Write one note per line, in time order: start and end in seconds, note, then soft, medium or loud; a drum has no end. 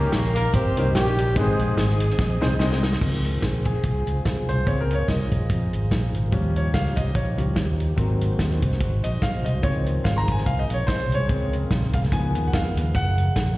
0.00 0.10 C#2 medium
0.00 0.32 D#3 medium
0.00 0.12 A#3 medium
0.00 0.16 A#3 medium
0.00 0.16 C#4 medium
0.00 0.31 C#4 medium
0.00 0.16 D#4 medium
0.00 0.16 G4 medium
0.00 0.11 A#4 medium
0.00 0.16 A#4 medium
0.00 1.35 A#4 medium
0.00 2.98 D#5 medium
0.00 1.35 G5 medium
0.12 0.48 A#1 medium
0.12 0.34 A#3 medium
0.12 0.34 A#4 medium
0.12 snare loud
0.12 closed hi-hat medium
0.25 snare soft
0.35 0.52 A#3 medium
0.35 0.52 A#4 loud
0.35 closed hi-hat medium
0.54 0.73 G1 medium
0.54 0.92 C4 medium
0.54 0.94 G4 medium
0.54 0.92 C5 medium
0.54 kick loud
0.54 closed hi-hat loud
0.77 0.93 C2 medium
0.77 0.86 A#3 medium
0.77 0.87 C#4 medium
0.77 0.87 D#4 medium
0.77 0.87 G4 medium
0.77 0.87 A#4 medium
0.77 closed hi-hat medium
0.95 1.36 A#1 medium
0.95 1.33 G3 medium
0.95 1.19 A#3 medium
0.95 1.34 A#3 medium
0.95 1.19 C#4 medium
0.95 1.34 C#4 medium
0.95 1.19 D#4 medium
0.95 1.33 G4 medium
0.95 1.20 G4 medium
0.95 1.20 A#4 medium
0.95 snare loud
0.95 closed hi-hat medium
1.18 closed hi-hat medium
1.35 1.56 G#1 loud
1.35 1.96 G#2 medium
1.35 1.80 G#3 medium
1.35 1.76 G#3 medium
1.35 1.80 C4 medium
1.35 1.76 C4 medium
1.35 1.81 D#4 medium
1.35 1.77 D#4 medium
1.35 1.81 G#4 medium
1.35 1.76 G#4 loud
1.35 1.42 B4 medium
1.35 3.00 C5 medium
1.35 3.00 G#5 medium
1.35 3.00 D#6 medium
1.35 kick loud
1.35 closed hi-hat medium
1.41 1.83 C5 medium
1.59 1.75 A#1 medium
1.59 closed hi-hat medium
1.77 2.12 G#1 loud
1.77 2.56 G#3 medium
1.77 2.56 C4 medium
1.77 2.56 D#4 medium
1.77 2.56 G#4 medium
1.77 snare loud
1.77 closed hi-hat medium
1.89 snare soft
2.00 closed hi-hat medium
2.10 snare soft
2.19 2.38 A#1 loud
2.19 kick loud
2.19 snare medium
2.41 2.57 C2 medium
2.41 2.51 G#3 medium
2.41 2.51 C4 medium
2.41 2.51 D#4 medium
2.41 2.52 G#4 medium
2.41 2.52 C5 medium
2.41 snare medium
2.59 2.95 C2 medium
2.59 2.84 G#3 medium
2.59 2.84 C4 medium
2.59 2.84 D#4 medium
2.59 2.85 G#4 medium
2.59 2.85 D#5 loud
2.59 snare medium
2.72 snare medium
2.83 snare loud
2.92 snare medium
3.01 3.36 C#2 loud
3.01 4.65 C3 medium
3.01 3.62 D#3 soft
3.01 3.63 F3 soft
3.01 3.63 C4 medium
3.01 4.66 C4 medium
3.01 4.65 F4 medium
3.01 6.30 F4 medium
3.01 6.29 G#4 medium
3.01 4.64 G#4 medium
3.01 7.94 C5 medium
3.01 kick loud
3.01 crash medium
3.25 closed hi-hat medium
3.42 3.78 A#1 medium
3.42 kick medium
3.42 snare loud
3.42 closed hi-hat medium
3.65 4.51 G#4 medium
3.65 kick medium
3.65 closed hi-hat medium
3.83 4.03 C2 medium
3.83 kick loud
3.83 closed hi-hat medium
4.07 4.22 C#2 medium
4.07 closed hi-hat medium
4.25 4.45 B1 medium
4.25 kick loud
4.25 snare loud
4.25 closed hi-hat medium
4.48 4.64 C2 medium
4.48 4.67 C5 medium
4.48 closed hi-hat medium
4.66 5.02 C#2 loud
4.66 4.95 C#3 medium
4.66 4.96 G#3 soft
4.66 7.94 A#3 medium
4.66 4.96 C4 medium
4.66 6.31 F4 medium
4.66 6.30 G#4 medium
4.66 4.81 C#5 medium
4.66 kick loud
4.66 closed hi-hat medium
4.81 4.95 A#4 medium
4.91 5.09 C#5 medium
4.91 closed hi-hat medium
5.08 5.28 C2 medium
5.08 6.10 D#5 medium
5.08 kick medium
5.08 snare loud
5.08 closed hi-hat medium
5.21 snare soft
5.32 5.47 A#1 medium
5.32 kick medium
5.32 closed hi-hat medium
5.50 5.69 F2 medium
5.50 kick loud
5.50 closed hi-hat loud
5.73 5.88 G#1 medium
5.73 closed hi-hat medium
5.91 6.11 A#1 medium
5.91 kick loud
5.91 snare loud
5.91 closed hi-hat medium
6.14 6.30 G#1 medium
6.14 closed hi-hat medium
6.31 6.68 D#2 loud
6.31 6.93 F3 medium
6.31 6.94 G3 soft
6.31 6.94 C#4 medium
6.31 7.96 D#4 medium
6.31 9.60 D#4 medium
6.31 7.96 G4 medium
6.31 kick loud
6.31 closed hi-hat medium
6.56 6.75 C#5 medium
6.56 closed hi-hat medium
6.74 6.94 C#2 loud
6.74 6.98 F5 loud
6.74 kick medium
6.74 snare loud
6.74 closed hi-hat medium
6.86 snare soft
6.96 7.13 C2 medium
6.96 7.14 D#5 medium
6.96 kick medium
6.96 closed hi-hat medium
7.15 7.35 A#1 medium
7.15 7.37 C#5 medium
7.15 kick loud
7.15 closed hi-hat medium
7.37 7.54 C#2 medium
7.37 7.54 F3 soft
7.37 7.54 G3 soft
7.37 7.54 C#4 medium
7.37 closed hi-hat medium
7.56 7.92 D#2 medium
7.56 kick loud
7.56 snare loud
7.56 closed hi-hat medium
7.80 closed hi-hat medium
7.96 8.33 G#1 loud
7.96 8.59 F#3 medium
7.96 9.62 G#3 medium
7.96 12.91 G#3 medium
7.96 8.59 A#3 soft
7.96 8.59 C4 medium
7.96 9.62 D#4 medium
7.96 9.62 F#4 medium
7.96 11.26 C5 medium
7.96 kick loud
7.96 closed hi-hat medium
8.21 closed hi-hat medium
8.39 8.59 D#2 medium
8.39 kick medium
8.39 snare loud
8.39 closed hi-hat medium
8.51 snare soft
8.62 8.78 C2 medium
8.62 kick medium
8.62 closed hi-hat medium
8.72 snare soft
8.80 9.00 G#1 medium
8.80 kick loud
8.80 closed hi-hat loud
9.04 9.19 A#1 medium
9.04 9.23 D#5 medium
9.04 closed hi-hat medium
9.22 9.42 B1 medium
9.22 9.46 F5 medium
9.22 kick medium
9.22 snare loud
9.22 closed hi-hat medium
9.45 9.61 C2 medium
9.45 9.64 D#5 medium
9.45 closed hi-hat medium
9.62 9.99 C#2 loud
9.62 13.58 C#3 medium
9.62 11.24 D#3 medium
9.62 11.25 F3 medium
9.62 11.25 C4 medium
9.62 13.58 G#4 medium
9.62 9.85 C#5 medium
9.62 kick loud
9.62 closed hi-hat medium
9.86 closed hi-hat medium
10.04 10.40 G#1 medium
10.04 10.17 F5 medium
10.04 kick medium
10.04 snare loud
10.04 closed hi-hat medium
10.17 10.33 A#5 loud
10.17 10.19 C6 medium
10.17 snare soft
10.28 kick medium
10.28 closed hi-hat medium
10.32 10.47 G#5 medium
10.38 snare soft
10.46 10.66 C2 medium
10.46 10.61 F5 medium
10.46 kick loud
10.46 closed hi-hat loud
10.59 10.74 D#5 medium
10.69 10.85 A#1 medium
10.69 closed hi-hat medium
10.74 10.88 C#5 medium
10.87 11.08 B1 medium
10.87 11.16 C5 medium
10.87 kick loud
10.87 snare loud
10.87 closed hi-hat medium
11.09 11.26 C2 loud
11.09 closed hi-hat medium
11.15 11.54 C#5 loud
11.28 11.65 C#2 loud
11.28 11.90 C#3 medium
11.28 11.90 G#3 soft
11.28 12.12 G#3 medium
11.28 12.12 A#3 medium
11.28 11.91 C4 medium
11.28 12.12 A#4 medium
11.28 kick loud
11.28 closed hi-hat medium
11.53 closed hi-hat medium
11.71 11.90 A#1 loud
11.71 kick medium
11.71 snare loud
11.71 closed hi-hat medium
11.83 snare soft
11.93 12.09 C2 medium
11.93 11.99 F5 medium
11.93 kick medium
11.93 closed hi-hat medium
12.03 snare soft
12.12 12.32 C#2 loud
12.12 12.73 D#3 medium
12.12 12.73 F3 medium
12.12 12.94 G#3 medium
12.12 12.74 B3 medium
12.12 12.95 B3 medium
12.12 12.94 B4 medium
12.12 12.48 G#5 loud
12.12 kick loud
12.12 closed hi-hat loud
12.35 12.51 D#2 medium
12.35 closed hi-hat medium
12.48 12.54 F#5 medium
12.53 12.73 F2 loud
12.53 12.96 F5 medium
12.53 kick medium
12.53 snare loud
12.53 closed hi-hat medium
12.76 12.92 D#2 loud
12.76 closed hi-hat medium
12.94 13.30 F#1 loud
12.94 13.58 F#3 medium
12.94 13.58 A#3 medium
12.94 13.58 A#4 medium
12.94 13.58 F#5 loud
12.94 kick loud
12.94 closed hi-hat medium
13.18 closed hi-hat medium
13.36 13.56 A#1 loud
13.36 kick medium
13.36 snare loud
13.36 closed hi-hat medium